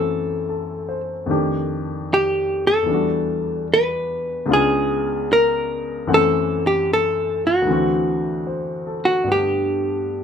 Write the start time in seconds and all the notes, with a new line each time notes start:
Already playing: F#2 E3 A3 C4 F#4 A4
0.49 A4
0.89 C5
1.26 F2 D#3 A3
1.30 D4 G4
2.14 G4
2.67 A4
2.83 E2 E3
2.88 G3 D4
2.94 F#4
3.74 B4
4.46 C#2 C#3 B3 D4
4.51 F4 G#4
5.33 A#4
6.07 F#2 E3 A3 C4 F#5
6.14 A4
6.67 G4
6.93 A4
7.47 F#4
7.62 D2 D3
7.67 E3 C4
7.72 F#4
8.47 C5
8.87 A4
9.05 F#4
9.24 G2 D3 A3 B3
9.29 G4 F#5